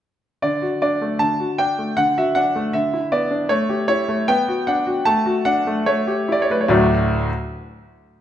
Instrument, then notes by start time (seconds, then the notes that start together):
grand piano
0.42 D3 D5
0.62 F#4
0.82 D4 D5
1.01 A3
1.19 D3 A5
1.40 F#4
1.58 D4 G5
1.78 A3
1.97 D3 F#5
2.18 F#4 E5
2.35 D4 F#5
2.55 A3
2.73 D3 E5
2.94 E4
3.12 B3 D5
3.31 D4
3.49 A3 C#5
3.69 G4
3.88 E4 C#5
4.08 A3
4.28 B3 G5
4.48 F#4
4.67 D4 F#5
4.87 F#4
5.05 A3 A5
5.26 F#4
5.45 D4 F#5
5.67 A3
5.86 A3 C#5
6.07 G4
6.29 E4 D5
6.42 C#5
6.50 A3 B4
6.61 C#5
6.68 D2 A2 F#3 A3 D4 F#4 D5